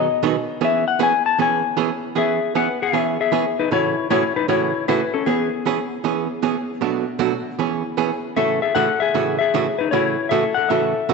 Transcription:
Already playing: D#5
0.23 B2 D#3 F#3 B3 D#4 G#4
0.61 E3 B3 C#4 G#4 E5
0.88 F#5
0.99 E3 B3 C#4 G#4 G#5
1.26 A5
1.39 E3 B3 C#4 G#4 G#5
1.77 E3 B3 C#4 G#4
2.15 E3 B3 C#4 G#4 E5
2.55 E3 B3 C#4 G#4 B4 F#5
2.82 G#4 E5
2.93 E3 B3 C#4 G#4
3.21 G#4 E5
3.32 E3 B3 C#4 G#4
3.59 D#4 B4
3.71 A2 C#3 E3 A3 C#4 E4 F#4 C#5
4.10 A2 C#3 E3 A3 C#4 E4 F#4 C#5
4.36 D#4 B4
4.49 A2 C#3 E3 A3 C#4 E4 F#4 C#5
4.88 A2 C#3 E3 A3 C#4 E4 F#4 B4
5.14 C#4 A4
5.26 E3 B3 C#4 G#4
5.66 E3 B3 C#4 G#4
6.04 E3 B3 C#4 G#4
6.42 E3 B3 C#4 G#4
6.81 B2 F#3 A3 D4 F#4
7.19 B2 F#3 A3 D4 F#4
7.59 E3 B3 C#4 G#4
7.97 E3 B3 C#4 G#4
8.36 A2 C#3 E3 A3 C#4 F#4 A4 E5
8.62 G#4 E5
8.75 A2 C#3 E3 A3 C#4 F#4 A4 F#5
9.00 G#4 E5
9.14 A2 C#3 E3 A3 C#4 F#4
9.39 G#4 E5
9.54 A2 C#3 E3 A3 C#4 F#4
9.79 D#4 B4
9.91 A2 C#3 E3 A3 C#4 E4 F#4 C#5
10.29 A2 C#3 E3 A3 C#4 F#4 A4 E5
10.54 A4 F#5
10.69 A2 C#3 E3 A3 C#4 F#4 A4 E5
11.09 A2 C#3 E3 A3 C#4 F#4

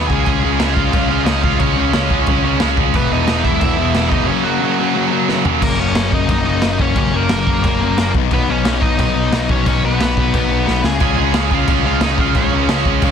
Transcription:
Already playing: B2 F#3
0.07 C#2 C#3 G#3 C#4 F4 G#4 G#5, kick
0.25 C#2 C#3 G#3 C#4 F4 G#4 G#5, kick, crash
0.43 C#2 C#3 G#3 C#4 F4
0.59 C#2 C#3 G#3 C#4 F4, snare, crash
0.74 C#2 C#3 G#3 C#4 F4 F5, kick
0.93 C#2 C#3 G#3 C#4 F4, kick, crash
1.09 C#3 G#3 C#4 F4 F5
1.25 C#2 C#3 G#3 C#4 D#4 F4 D#5, snare, crash
1.43 C#2 C#3 G#3 C#4 F4 F5, kick
1.59 C#2 C#3 G#3 C#4 F4 C#5, kick, crash
1.77 C#2 C#3 G#3 C#4 F4
1.93 C#2 C#3 G#3 C#4 F4, snare, crash
2.10 C#2 C#3 G#3 C#4 F4, kick
2.26 C#2 C#3 G#3 C#4 F4, kick, crash
2.45 C#3 G#3 C#4 F4
2.60 C#2 C#3 G#3 C#4 F4, snare, crash
2.77 C#2 C#3 G#3 C#4 F4, kick
2.94 E1 E2 B2 E3 G#3 B3 E4 B4, kick, crash
3.12 E1 E2 B2 E3 G#3 B3 D#4 E4 D#5
3.27 E1 E2 B2 E3 G#3 B3 E4, snare, crash
3.44 E1 E2 B2 E3 G#3 B3 E4 E5, kick
3.60 E1 E2 B2 E3 G#3 B3 E4 E5, kick, crash
3.77 E2 B2 E3 G#3 B3 E4
3.94 E1 E2 B2 E3 G#3 B3 E4, snare, crash
4.09 F1 B3 D#4 E4 D#5, kick
4.13 E2 B2 E3 G#3
4.27 F#2 C#3 F#3 A#3 C#4 C#5
4.43 F#2 C#3 F#3 A#3 C#4 F#4
4.60 F#2 C#3 F#3 A#3 C#4
4.79 F#2 C#3 F#3 A#3 C#4
4.95 F#2 C#3 F#3 A#3 C#4
5.11 F#2 C#3 F#3 A#3 C#4
5.29 F#2 C#3 F#3 A#3 C#4, snare
5.45 F#2 C#3 F#3 A#3 C#4, floor tom
5.61 F#1 F#2 C#3 F#3 A#3 C#4 A#4, kick, crash
5.78 F#1 F#2 C#3 F#3 A#3 C#4 C#5
5.95 F#1 F#2 C#3 F#3 A#3 C#4, snare, crash
6.12 F#1 F#2 C#3 F#3 A#3 C#4 D#4 D#5, kick
6.29 F#1 F#2 C#3 F#3 A#3 C#4 D#4 D#5, kick, crash
6.46 F#2 C#3 F#3 A#3 C#4
6.62 F#1 F#2 C#3 F#3 A#3 C#4, snare, crash
6.79 F#1 F#2 C#3 F#3 A#3 C#4 C#5, kick
6.95 F#1 F#2 C#3 F#3 A#3 C#4, kick, crash
6.99 C#5
7.12 F#1 F#2 C#3 F#3 A#3 C#4
7.17 A#4
7.29 F#1 F#2 C#3 F#3 A#3 C#4, snare, crash
7.47 F#1 F#2 C#3 F#3 A#3 C#4, kick
7.63 F#1 F#2 C#3 F#3 A#3 C#4, kick, crash
7.81 F#2 C#3 F#3 A#3 C#4
7.97 F#1 F#2 C#3 F#3 A#3 C#4, snare, crash
8.14 B1 B2 F#3 B3 D#4, kick
8.31 B1 B2 F#3 B3 D#4 B4, kick, crash
8.48 B1 B2 F#3 B3 C#4 D#4 C#5
8.65 B1 B2 F#3 B3 D#4, snare, crash
8.81 B1 B2 F#3 B3 D#4 D#5, kick
8.98 B1 B2 F#3 B3 D#4 D#5, kick, crash
9.15 B2 F#3 B3 D#4
9.32 B1 B2 F#3 B3 D#4, snare, crash
9.49 B1 B2 F#3 B3 C#4 D#4 C#5, kick
9.66 B1 B2 F#3 B3 C#4 D#4 C#5, kick, crash
9.83 B1 B2 F#3 B3 D#4 B4
10.00 B1 B2 F#3 B3 D#4, snare, crash
10.17 B1 B2 F#3 B3 D#4, kick
10.34 B1 B2 F#3 B3 D#4, kick, crash
10.51 B2 F#3 B3 D#4
10.66 B1 B2 F#3 B3 D#4, snare
10.84 C#2 C#3 G#3 C#4 F4 G#4 G#5, snare
11.00 C#2 C#3 G#3 C#4 F4 G#4 G#5, kick, crash
11.18 C#2 C#3 G#3 C#4 F4
11.34 C#2 C#3 G#3 C#4 F4, snare, crash
11.51 C#2 C#3 G#3 C#4 F4 F5, kick
11.68 C#2 C#3 G#3 C#4 F4, kick, crash
11.85 C#3 G#3 C#4 F4 F5
12.01 C#2 C#3 G#3 C#4 D#4 F4 D#5, snare, crash
12.18 C#2 C#3 G#3 C#4 F4 F5, kick
12.35 C#2 C#3 G#3 C#4 F4 C#5, kick, crash
12.53 C#2 C#3 G#3 C#4 F4
12.69 C#2 C#3 G#3 C#4 F4, snare, crash
12.85 C#2 C#3 G#3 C#4 F4, kick
13.02 C#2 C#3 G#3 C#4 F4, kick, crash

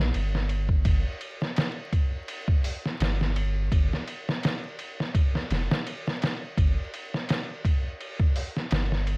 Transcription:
Already playing: A#1
0.14 G1, ride
0.35 snare
0.49 ride
0.69 kick
0.85 G1, kick, ride
1.21 ride
1.42 snare
1.56 snare, ride
1.93 kick, ride
2.28 ride
2.48 kick
2.64 open hi-hat
2.85 snare
3.00 G1, snare, ride
3.21 snare
3.36 ride
3.72 G1, kick, ride
3.93 snare
4.07 ride
4.29 snare
4.43 snare, ride
4.79 ride
5.00 snare
5.15 kick, ride
5.35 snare
5.50 F1, snare, ride
5.71 snare
5.87 ride
6.07 snare
6.22 snare, ride
6.57 G1, kick, ride
6.94 ride
7.14 snare
7.29 snare, ride
7.65 kick, ride
8.01 ride
8.20 kick
8.36 open hi-hat
8.57 snare
8.71 G1, snare, ride
8.92 snare
9.07 ride

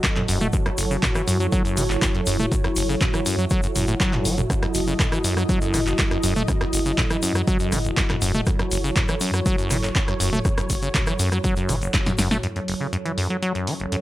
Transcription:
Already playing: F#3 E4 F#4 A4 D#5
0.04 F#2, kick, clap, closed hi-hat, shaker
0.16 F#2, clap, closed hi-hat, mid tom
0.28 E1 F#2, open hi-hat, shaker
0.40 A3, closed hi-hat, mid tom, shaker
0.53 F#2 C#5, kick, closed hi-hat, shaker
0.66 F#2, cross-stick, closed hi-hat
0.78 F#1, open hi-hat, shaker
0.91 C#3, shaker
1.03 F#2, kick, clap, closed hi-hat, mid tom, shaker
1.15 E3, cross-stick, closed hi-hat, shaker
1.28 F#2, open hi-hat, shaker
1.40 F#3, closed hi-hat, shaker
1.52 F#3, kick, closed hi-hat, shaker
1.65 F#2, closed hi-hat, shaker
1.77 F#1 F#3, mid tom, open hi-hat, shaker
1.90 F#1, clap, closed hi-hat, shaker
2.02 F#2, kick, clap, closed hi-hat, shaker
2.15 F#2, closed hi-hat
2.26 E1 F#2, open hi-hat, shaker
2.39 A3, mid tom, shaker
2.52 F#2, kick, closed hi-hat, shaker
2.64 F#2, cross-stick, closed hi-hat
2.76 F#1, open hi-hat, shaker
2.89 C#3, shaker
3.01 F#2, kick, clap, closed hi-hat, mid tom, shaker
3.14 E3, cross-stick, closed hi-hat, shaker
3.26 F#2, open hi-hat, shaker
3.39 F#3, closed hi-hat, shaker
3.50 F#3, kick, closed hi-hat, shaker
3.63 F#2, closed hi-hat, shaker
3.76 F#1 F#2, mid tom, open hi-hat, shaker
3.87 A2, closed hi-hat, shaker
4.00 F#3, kick, clap, closed hi-hat, shaker
4.13 F#2, clap, closed hi-hat, mid tom
4.25 F#1 F#3, open hi-hat, shaker
4.38 F#2, closed hi-hat, mid tom, shaker
4.50 F#2 D#5, kick, cross-stick, closed hi-hat, shaker
4.63 F#2, cross-stick, closed hi-hat
4.74 F#1, open hi-hat, shaker
4.87 C#3, shaker
5.00 F#2, kick, cross-stick, clap, closed hi-hat, mid tom, shaker
5.12 E3, cross-stick, closed hi-hat, shaker
5.24 F#2, open hi-hat, shaker
5.37 F#3, cross-stick, closed hi-hat, shaker
5.49 F#3, kick, closed hi-hat, shaker
5.61 F#2, closed hi-hat, shaker
5.74 F#1 F#3, cross-stick, mid tom, open hi-hat, shaker
5.86 F#1, clap, closed hi-hat, shaker
5.98 F#2, kick, clap, closed hi-hat, shaker
6.11 F#2, cross-stick, closed hi-hat
6.23 E1 F#2, open hi-hat, shaker
6.36 A3, closed hi-hat, mid tom, shaker
6.48 F#2, kick, cross-stick, closed hi-hat, shaker
6.61 F#2, cross-stick, closed hi-hat
6.73 F#1, open hi-hat, shaker
6.86 C#3, shaker
6.98 F#2, kick, cross-stick, clap, closed hi-hat, mid tom, shaker
7.10 E3, cross-stick, closed hi-hat, shaker
7.22 F#2, open hi-hat, shaker
7.35 F#3, cross-stick, closed hi-hat, shaker
7.47 F#3, kick, closed hi-hat, shaker
7.59 F#2, closed hi-hat, shaker
7.72 F#1 F#3, cross-stick, mid tom, open hi-hat, shaker
7.85 F#1, closed hi-hat, shaker
7.97 F#2, kick, clap, closed hi-hat, shaker
8.10 F#2, cross-stick, clap, closed hi-hat, mid tom
8.21 E1 F#2, open hi-hat, shaker
8.34 A3, mid tom, shaker
8.46 F#2 C#5, kick, cross-stick, closed hi-hat, shaker
8.59 F#2, cross-stick, closed hi-hat
8.71 F#1, open hi-hat, shaker
8.84 C#3, shaker
8.96 F#2, kick, cross-stick, clap, closed hi-hat, mid tom, shaker
9.08 E3, cross-stick, closed hi-hat, shaker
9.20 F#2, open hi-hat, shaker
9.34 F#3, cross-stick, shaker
9.46 F#3, kick, closed hi-hat, shaker
9.58 F#2, closed hi-hat, shaker
9.70 F#1 F#3, cross-stick, mid tom, open hi-hat, shaker
9.83 F#1, clap, closed hi-hat, shaker
9.95 F#2, kick, clap, closed hi-hat, shaker
10.08 F#2, cross-stick, closed hi-hat
10.20 E1 F#2, open hi-hat, shaker
10.33 A3, closed hi-hat, mid tom, shaker
10.45 F#2, kick, cross-stick, closed hi-hat, shaker
10.58 F#2, cross-stick, closed hi-hat, shaker
10.70 F#1, kick, open hi-hat, shaker
10.82 C#3, closed hi-hat, shaker
10.95 F#2, kick, cross-stick, clap, closed hi-hat, mid tom, shaker
11.07 E3, cross-stick, closed hi-hat, shaker
11.19 F#2, open hi-hat, shaker
11.32 F#3, cross-stick, closed hi-hat, shaker
11.44 F#3, kick, closed hi-hat, shaker
11.56 F#2, closed hi-hat, shaker
11.69 F#1 F#3, cross-stick, mid tom, open hi-hat, shaker
11.81 F#1, closed hi-hat, shaker
11.94 F#2, kick, snare, clap, closed hi-hat, shaker
12.06 F#2, snare, closed hi-hat, mid tom, shaker
12.18 F#1 F#2, snare, open hi-hat, shaker
12.31 A3, snare, mid tom, shaker
12.43 F#2 F#3 C#4 A4 C#5, closed hi-hat
12.56 F#2 A4, closed hi-hat
12.68 F#1 F#5, open hi-hat
12.81 C#3
12.93 F#2, closed hi-hat
13.05 E3, closed hi-hat
13.18 F#2, open hi-hat
13.27 F#3 A5, closed hi-hat
13.42 F#3, closed hi-hat
13.55 F#2, closed hi-hat
13.67 F#3, open hi-hat
13.80 F#1, closed hi-hat
13.92 F#2, closed hi-hat

